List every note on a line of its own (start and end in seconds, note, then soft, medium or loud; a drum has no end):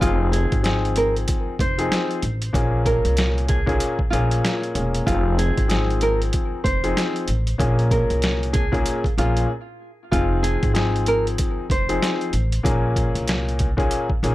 0.01 0.45 F1 loud
0.01 0.60 F3 medium
0.01 0.61 C4 medium
0.01 0.61 D#4 medium
0.01 0.30 F4 loud
0.01 0.61 G#4 loud
0.01 kick loud
0.01 closed hi-hat loud
0.32 0.61 G#4 medium
0.32 closed hi-hat medium
0.52 1.24 G#1 loud
0.52 kick loud
0.52 closed hi-hat medium
0.63 1.52 F3 medium
0.63 1.53 C4 medium
0.63 1.53 D#4 medium
0.63 1.53 G#4 loud
0.63 snare loud
0.63 closed hi-hat medium
0.85 closed hi-hat soft
0.96 1.14 A#4 medium
0.96 closed hi-hat medium
1.16 closed hi-hat soft
1.28 kick medium
1.28 closed hi-hat loud
1.59 1.86 F1 medium
1.59 2.51 C5 medium
1.59 kick medium
1.59 closed hi-hat medium
1.78 2.20 F3 medium
1.78 2.20 C4 medium
1.78 2.20 D#4 medium
1.78 2.20 G#4 loud
1.78 closed hi-hat medium
1.92 snare loud
1.92 closed hi-hat medium
2.11 closed hi-hat soft
2.22 2.50 A1 medium
2.22 closed hi-hat medium
2.42 closed hi-hat medium
2.53 2.97 A#1 loud
2.53 3.57 A#2 medium
2.53 3.57 A#3 medium
2.53 3.57 C#4 medium
2.53 3.57 G#4 medium
2.53 kick loud
2.53 closed hi-hat medium
2.86 3.45 A#4 medium
2.86 kick medium
2.86 closed hi-hat medium
3.05 3.77 C2 medium
3.05 closed hi-hat medium
3.17 snare loud
3.17 closed hi-hat medium
3.38 closed hi-hat soft
3.48 4.08 G#4 medium
3.48 kick loud
3.48 closed hi-hat medium
3.66 3.96 A#2 loud
3.66 3.96 A#3 medium
3.66 3.96 C#4 medium
3.66 3.96 G#4 loud
3.66 kick medium
3.66 closed hi-hat soft
3.80 closed hi-hat loud
3.99 kick medium
4.10 4.39 A#1 medium
4.10 4.71 A#2 loud
4.10 4.72 A#3 medium
4.10 4.72 C#4 medium
4.10 4.59 F4 medium
4.10 4.72 G#4 loud
4.10 closed hi-hat medium
4.31 closed hi-hat medium
4.45 snare loud
4.45 closed hi-hat medium
4.63 closed hi-hat soft
4.74 5.02 E1 loud
4.74 5.04 A#2 medium
4.74 5.05 A#3 medium
4.74 5.05 C#4 medium
4.74 5.05 G#4 medium
4.74 closed hi-hat medium
4.95 closed hi-hat medium
5.06 5.50 F1 loud
5.06 5.66 F3 medium
5.06 5.66 C4 medium
5.06 5.66 D#4 medium
5.06 5.35 F4 loud
5.06 5.66 G#4 loud
5.06 kick loud
5.06 closed hi-hat loud
5.38 5.67 G#4 medium
5.38 closed hi-hat medium
5.58 6.30 G#1 loud
5.58 kick loud
5.58 closed hi-hat medium
5.68 6.58 F3 medium
5.68 6.58 C4 medium
5.68 6.58 D#4 medium
5.68 6.58 G#4 medium
5.68 snare loud
5.68 closed hi-hat medium
5.90 closed hi-hat soft
6.01 6.19 A#4 medium
6.01 closed hi-hat medium
6.22 closed hi-hat soft
6.33 kick loud
6.33 closed hi-hat loud
6.64 6.92 F1 loud
6.64 7.55 C5 medium
6.64 kick medium
6.64 closed hi-hat medium
6.83 7.25 F3 medium
6.83 7.25 C4 medium
6.83 7.25 D#4 medium
6.83 7.25 G#4 medium
6.83 closed hi-hat medium
6.97 snare loud
6.97 closed hi-hat medium
7.16 closed hi-hat soft
7.28 7.55 A1 medium
7.28 closed hi-hat medium
7.47 closed hi-hat medium
7.58 8.03 A#1 loud
7.58 8.62 A#2 medium
7.58 8.62 A#3 medium
7.58 8.62 C#4 medium
7.58 8.62 G#4 loud
7.58 kick loud
7.58 closed hi-hat loud
7.79 closed hi-hat soft
7.91 8.51 A#4 medium
7.91 kick medium
7.91 closed hi-hat medium
8.10 8.82 C2 medium
8.10 closed hi-hat medium
8.22 snare loud
8.22 closed hi-hat medium
8.43 closed hi-hat soft
8.53 9.13 G#4 medium
8.53 kick loud
8.53 closed hi-hat medium
8.72 9.01 A#2 loud
8.72 9.01 A#3 medium
8.72 9.01 C#4 medium
8.72 9.02 G#4 loud
8.72 kick medium
8.72 closed hi-hat soft
8.86 closed hi-hat loud
9.04 kick medium
9.04 closed hi-hat soft
9.18 9.45 A#1 medium
9.18 9.49 A#2 loud
9.18 9.49 A#3 medium
9.18 9.50 C#4 medium
9.18 9.48 F4 medium
9.18 9.50 G#4 loud
9.18 closed hi-hat medium
9.37 closed hi-hat medium
10.11 10.55 F1 loud
10.11 10.71 F3 loud
10.11 10.71 C4 medium
10.11 10.71 D#4 medium
10.11 10.40 F4 loud
10.11 10.71 G#4 loud
10.11 kick loud
10.11 closed hi-hat loud
10.43 10.72 G#4 medium
10.43 closed hi-hat medium
10.63 11.35 G#1 loud
10.63 kick loud
10.63 closed hi-hat medium
10.73 11.63 F3 medium
10.73 11.63 C4 medium
10.73 11.63 D#4 medium
10.73 11.64 G#4 loud
10.73 snare loud
10.73 closed hi-hat medium
10.96 closed hi-hat soft
11.06 11.24 A#4 medium
11.06 closed hi-hat medium
11.27 closed hi-hat soft
11.38 kick loud
11.38 closed hi-hat loud
11.70 11.97 F1 medium
11.70 12.61 C5 medium
11.70 kick medium
11.70 closed hi-hat medium
11.89 12.30 F3 medium
11.89 12.30 C4 medium
11.89 12.30 D#4 medium
11.89 12.31 G#4 medium
11.89 closed hi-hat medium
12.02 snare loud
12.02 closed hi-hat loud
12.21 closed hi-hat soft
12.33 12.60 A1 medium
12.33 closed hi-hat medium
12.52 closed hi-hat medium
12.63 13.08 A#1 loud
12.63 13.67 A#2 loud
12.63 13.67 A#3 medium
12.63 13.68 C#4 medium
12.63 13.68 G#4 loud
12.63 kick loud
12.63 closed hi-hat medium
12.96 kick medium
12.96 closed hi-hat medium
13.15 13.87 C2 medium
13.15 closed hi-hat medium
13.28 snare loud
13.28 closed hi-hat medium
13.49 closed hi-hat soft
13.59 kick loud
13.59 closed hi-hat medium
13.77 14.06 A#2 loud
13.77 14.06 A#3 medium
13.77 14.07 C#4 medium
13.77 14.07 G#4 loud
13.77 kick medium
13.77 closed hi-hat soft
13.91 closed hi-hat loud
14.10 kick medium
14.23 14.35 A#1 medium
14.23 14.35 A#2 loud
14.23 14.35 A#3 medium
14.23 14.35 C#4 medium
14.23 14.35 G#4 loud
14.23 closed hi-hat medium